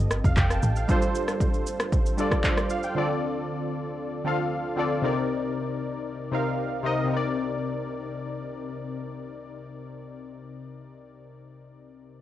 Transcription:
Already playing: F3 C4 G4 A4 D#5
0.00 G1
0.11 cross-stick, shaker
0.25 F1 F5, kick, shaker
0.37 F1 G5, kick, clap, shaker
0.51 A5, cross-stick, shaker
0.63 A1, shaker
0.76 F5, shaker
0.88 G3 D4 F4 A4 C5, kick, shaker
1.02 shaker
1.15 shaker
1.28 cross-stick, shaker
1.40 kick, shaker
1.54 shaker
1.67 shaker
1.80 cross-stick, shaker
1.92 kick, shaker
2.06 shaker
2.17 G3 D4 F4 A4 D5, shaker
2.32 kick, cross-stick, shaker
2.44 C5, kick, clap, shaker
2.58 D5, cross-stick, shaker
2.70 F5, shaker
2.83 G5, shaker
2.95 D3 C4 F4 A4 D5
4.24 D3 C4 F4 A4 F5
4.76 D3 C4 F4 A4 D5
5.02 C3 C4 D#4 A#4 D5
6.31 C3 C4 D#4 A#4 F5
6.83 C3 C4 D#4 A#4 D#5
7.04 C3 C4
7.10 D#4 A#4
7.17 D5

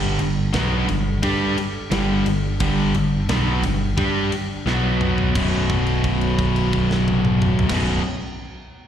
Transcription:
Already playing: G1 G2 D3 G3 D4 A4
0.19 G1 G2 D3, ride
0.53 B1 B2 F#3 B3, snare, ride
0.88 G1 G2 D3, ride
1.23 G2 G3 D4 G4, kick, ride
1.57 muted distorted electric guitar stroke, muted picked electric bass stroke, ride
1.91 G1 G2 D3 G3, snare, ride
2.26 G1 G2 D3, ride
2.60 G1 G2 D3 G3 G5, kick, ride
2.95 G1 G2 D3, ride
3.29 B1 B2 F#3 B3, snare, ride
3.63 G1 G2 D3, ride
3.97 G2 G3 D4 G4, kick, ride
4.32 muted picked electric bass stroke, muted distorted electric guitar stroke, ride
4.66 B1 B2 F#3 B3 F#4 C#5, snare
5.01 mid tom
5.18 floor tom
5.34 B0 B1 F#2 B2 B3 F#4 C#5, kick, crash
5.70 kick, crash
5.87 crash
6.04 kick, crash
6.21 crash
6.39 kick, crash
6.56 crash
6.73 kick, crash
6.91 snare
7.08 high tom
7.25 mid tom
7.42 mid tom
7.59 floor tom
7.68 B0 B1 F#2 B2, kick, snare, crash

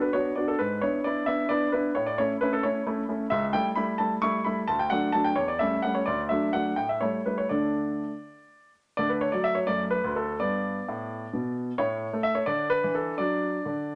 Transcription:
0.02 B4
0.13 B3 D4 F#4 C#5
0.36 B3 D4 F#4 D5
0.48 A4
0.59 G#2 B4
0.81 B3 D4 E4 C#5
1.04 B3 D4 E4 D5
1.26 B3 D4 E4 E5
1.49 B3 D4 E4 D5
1.72 B3 D4 E4 B4
1.95 A2 C#5
2.07 D5
2.18 A3 C#4 E4 C#5
2.41 A3 C#4 E4 B4
2.53 A4
2.63 A3 C#4 E4 C#5
2.87 A3 C#4 E4
3.09 A3 C#4 E4
3.30 C#2 E5
3.53 G3 A3 E4 G5
3.76 G3 A3 E4 B5
3.98 G3 A3 E4 A5
4.22 G3 A3 E4 C#6
4.44 G3 A3 E4 B5
4.68 D2 A5
4.79 G5
4.90 F#3 A3 D4 F#5
5.12 F#3 A3 D4 A5
5.24 G5
5.36 E2 C#5
5.48 D5
5.59 G3 A3 C#4 E5
5.82 G3 A3 C#4 F#5
5.95 C#5
6.06 D2 D5
6.29 F#3 A3 D4 E5
6.53 F#3 A3 D4 F#5
6.76 A2 G5
6.89 E5
7.01 G3 A3 E4 C#5
7.26 G3 A3 E4 B4
7.38 C#5
7.49 D3 A3 D4 D5
8.97 D3 A3 D5
9.09 B4
9.21 C#5
9.32 F#3 D5
9.44 E5
9.55 C#5
9.67 F#2 A3 D5
9.91 B4
10.04 D2
10.16 A4
10.40 G2 B3 D5
10.89 A2
11.33 B2
11.78 A2 E4 C#5
12.13 A3
12.23 E5
12.35 C#5
12.46 D3 D4 D5
12.70 B4
12.84 E3
12.95 A4
13.18 F#3 D4 D5
13.65 D3

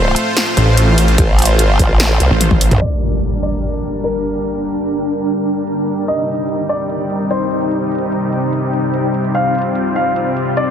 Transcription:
Already playing: A1 A3 F4 C5
0.16 closed hi-hat
0.37 snare, closed hi-hat
0.57 A1, closed hi-hat
0.77 closed hi-hat
0.98 open hi-hat
1.08 closed hi-hat
1.18 A1, kick, closed hi-hat
1.39 closed hi-hat
1.42 closed hi-hat
1.45 closed hi-hat
1.59 G#1, closed hi-hat
1.79 A1, kick, closed hi-hat
2.00 snare, closed hi-hat
2.20 C2, closed hi-hat
2.31 A1
2.41 closed hi-hat, high tom
2.51 kick, high tom
2.61 open hi-hat
2.71 A#1, closed hi-hat, mid tom
2.81 G3 D4 A#4 D5, impact
2.96 G5
3.02 closed hi-hat
3.05 closed hi-hat
3.09 A#4, closed hi-hat
3.22 closed hi-hat
3.43 D5, closed hi-hat
3.63 closed hi-hat
3.84 closed hi-hat
4.04 A#4, closed hi-hat
4.24 closed hi-hat
4.35 closed hi-hat
4.45 closed hi-hat
4.65 closed hi-hat
4.69 closed hi-hat
4.72 closed hi-hat
4.86 closed hi-hat
5.06 closed hi-hat
5.26 closed hi-hat
5.47 closed hi-hat
5.67 closed hi-hat
5.88 closed hi-hat
5.98 closed hi-hat
6.08 C3 D#4 D#5, closed hi-hat
6.18 C5
6.28 closed hi-hat
6.32 closed hi-hat
6.35 closed hi-hat
6.49 closed hi-hat
6.69 D5, closed hi-hat
6.90 closed hi-hat
7.10 closed hi-hat
7.30 C5, closed hi-hat
7.51 closed hi-hat
7.61 closed hi-hat
7.71 closed hi-hat
7.92 closed hi-hat
7.95 closed hi-hat
7.99 closed hi-hat
8.12 closed hi-hat
8.33 closed hi-hat
8.53 closed hi-hat
8.73 closed hi-hat
8.94 closed hi-hat
9.14 closed hi-hat
9.24 closed hi-hat
9.35 C4 F4 F5, closed hi-hat
9.41 F4
9.55 closed hi-hat
9.58 closed hi-hat
9.62 closed hi-hat
9.75 closed hi-hat
9.96 F5, closed hi-hat
10.16 closed hi-hat
10.37 closed hi-hat
10.57 D5, closed hi-hat

